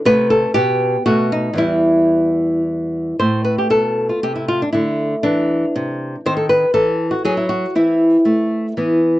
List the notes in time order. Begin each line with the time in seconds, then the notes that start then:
0.05 C3 A3 B4
0.30 A4
0.54 B2 B3 G4
1.06 B2 A3 F#4
1.32 D#4
1.53 E2 E3 G3
1.58 E4
3.19 A2 A3 C5
3.44 B4
3.58 G4
3.70 B2 A4
4.09 F4
4.23 C3 G4
4.36 E4
4.48 F4
4.62 D4
4.73 D3 A3 E4
5.23 E3 D4
5.76 C3
6.26 D#3 C4 C5
6.37 A4
6.49 B4
6.74 E3 A4
7.11 F#4
7.25 F#3 G#4
7.37 E4
7.49 F#4
7.75 E3 C4 E4
8.25 A3
8.77 E3 B3